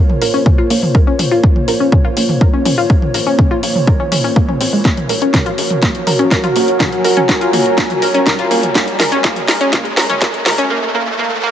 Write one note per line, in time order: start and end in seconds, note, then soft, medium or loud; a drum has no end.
0.00 4.81 A#3 medium
0.00 4.81 F4 medium
0.00 6.21 A#4 medium
0.00 4.81 C5 medium
0.00 10.66 C#5 medium
0.00 6.16 F5 medium
0.00 riser medium
0.10 mid tom medium
0.22 0.42 A#1 medium
0.22 0.32 A#4 medium
0.22 open hi-hat loud
0.34 0.41 C#4 loud
0.46 0.50 C#4 medium
0.46 kick loud
0.46 mid tom medium
0.58 0.65 F4 loud
0.70 0.91 A#1 loud
0.70 0.81 A#3 medium
0.70 open hi-hat loud
0.83 mid tom medium
0.95 1.05 A#4 medium
0.95 kick loud
1.07 1.14 C#4 loud
1.19 1.40 A#1 loud
1.19 1.23 C#4 medium
1.19 mid tom medium
1.19 open hi-hat loud
1.31 1.38 F4 loud
1.44 1.54 A#3 medium
1.44 kick loud
1.56 mid tom medium
1.68 1.89 A#1 medium
1.68 1.79 A#4 medium
1.68 open hi-hat loud
1.80 1.87 C#4 loud
1.92 1.97 C#4 medium
1.92 kick loud
1.92 mid tom medium
2.05 2.12 F4 loud
2.17 2.37 A#1 medium
2.17 2.27 A#3 medium
2.17 open hi-hat loud
2.29 mid tom medium
2.41 2.52 A#4 medium
2.41 kick loud
2.53 2.60 C#4 loud
2.65 2.86 A#1 loud
2.65 2.70 C#4 medium
2.65 mid tom medium
2.65 open hi-hat loud
2.78 2.85 F4 loud
2.90 3.00 A#3 medium
2.90 kick loud
3.02 mid tom medium
3.14 3.35 A#1 medium
3.14 3.25 A#4 medium
3.14 open hi-hat loud
3.27 3.34 C#4 loud
3.39 3.43 C#4 medium
3.39 kick loud
3.39 mid tom medium
3.51 3.58 F4 loud
3.63 3.84 A#1 medium
3.63 3.74 A#3 medium
3.63 open hi-hat loud
3.75 mid tom medium
3.87 3.98 A#4 medium
3.87 kick loud
4.00 4.07 C#4 loud
4.12 4.32 A#1 medium
4.12 4.19 C#4 loud
4.12 mid tom medium
4.12 open hi-hat loud
4.24 4.28 C#4 loud
4.36 4.43 A#3 medium
4.36 kick loud
4.49 4.53 C#4 medium
4.49 mid tom medium
4.61 4.81 A#1 medium
4.61 4.71 C4 medium
4.61 open hi-hat loud
4.73 4.77 G#3 medium
4.85 4.96 A#3 medium
4.85 10.70 F#4 medium
4.85 10.66 F#4 medium
4.85 10.66 A#4 medium
4.85 kick loud
4.85 snare soft
4.85 closed hi-hat medium
4.97 closed hi-hat soft
4.97 mid tom medium
5.09 5.30 A#1 medium
5.09 5.20 A#4 medium
5.09 open hi-hat loud
5.22 5.29 C#4 medium
5.22 10.70 A#5 medium
5.22 closed hi-hat soft
5.27 10.70 C#5 medium
5.34 5.41 A#4 medium
5.34 kick loud
5.34 snare soft
5.34 closed hi-hat medium
5.34 mid tom medium
5.46 5.53 F4 loud
5.46 closed hi-hat soft
5.58 5.79 A#1 medium
5.58 5.69 A#3 medium
5.58 open hi-hat loud
5.70 10.70 G#5 loud
5.70 closed hi-hat soft
5.70 mid tom medium
5.82 5.93 A#3 medium
5.82 kick loud
5.82 snare medium
5.82 closed hi-hat medium
5.95 closed hi-hat soft
6.07 6.28 A#1 medium
6.07 6.18 A#4 medium
6.07 mid tom medium
6.07 open hi-hat loud
6.19 6.26 C#4 medium
6.19 closed hi-hat soft
6.31 6.38 A#4 medium
6.31 kick loud
6.31 snare medium
6.31 closed hi-hat medium
6.44 6.51 F4 loud
6.44 closed hi-hat soft
6.44 mid tom medium
6.56 6.76 A#1 loud
6.56 6.66 A#3 medium
6.56 open hi-hat loud
6.68 closed hi-hat soft
6.80 6.91 A#3 medium
6.80 kick loud
6.80 snare medium
6.80 closed hi-hat medium
6.80 mid tom loud
6.92 closed hi-hat soft
7.04 7.25 A#1 loud
7.04 7.15 A#4 medium
7.04 open hi-hat loud
7.17 7.24 C#4 medium
7.17 closed hi-hat soft
7.17 mid tom medium
7.29 7.36 A#4 loud
7.29 kick loud
7.29 snare medium
7.29 closed hi-hat medium
7.41 7.48 F4 loud
7.41 closed hi-hat soft
7.53 7.74 A#1 medium
7.53 7.64 A#3 medium
7.53 mid tom medium
7.53 open hi-hat loud
7.66 closed hi-hat soft
7.78 7.88 A#3 medium
7.78 kick loud
7.78 snare medium
7.78 closed hi-hat medium
7.90 closed hi-hat soft
7.90 mid tom medium
8.02 8.23 A#1 medium
8.02 8.13 A#4 medium
8.02 open hi-hat loud
8.14 8.21 C#4 loud
8.14 closed hi-hat soft
8.26 8.34 A#4 loud
8.26 kick loud
8.26 snare medium
8.26 closed hi-hat medium
8.26 mid tom medium
8.39 8.46 F4 loud
8.39 closed hi-hat soft
8.51 8.71 A#1 loud
8.51 8.61 A#3 medium
8.51 open hi-hat loud
8.63 closed hi-hat soft
8.63 mid tom medium
8.75 8.86 A#3 medium
8.75 kick loud
8.75 snare medium
8.75 closed hi-hat medium
8.88 closed hi-hat soft
9.00 9.20 A#1 loud
9.00 9.10 A#4 medium
9.00 snare medium
9.00 mid tom loud
9.00 open hi-hat loud
9.12 9.19 C#4 loud
9.12 closed hi-hat soft
9.24 9.35 A#3 medium
9.24 kick loud
9.24 snare medium
9.24 closed hi-hat medium
9.36 closed hi-hat soft
9.36 mid tom loud
9.48 9.69 A#1 medium
9.48 9.59 A#4 medium
9.48 snare medium
9.48 open hi-hat loud
9.61 9.68 C#4 loud
9.61 closed hi-hat soft
9.73 9.83 A#3 medium
9.73 kick loud
9.73 snare medium
9.73 closed hi-hat medium
9.73 mid tom loud
9.85 closed hi-hat soft
9.97 10.18 A#1 medium
9.97 10.08 A#4 medium
9.97 snare medium
9.97 open hi-hat loud
10.10 10.16 C#4 loud
10.10 closed hi-hat soft
10.10 mid tom loud
10.22 10.32 A#3 medium
10.22 kick loud
10.22 snare medium
10.22 closed hi-hat medium
10.34 closed hi-hat soft
10.46 10.67 A#1 loud
10.46 10.57 A#4 medium
10.46 snare medium
10.46 mid tom loud
10.46 open hi-hat loud
10.58 10.65 C#4 loud
10.58 closed hi-hat medium
10.70 10.81 A#3 medium
10.95 11.05 A#3 medium
11.19 11.30 A#3 medium
11.43 11.51 A#3 medium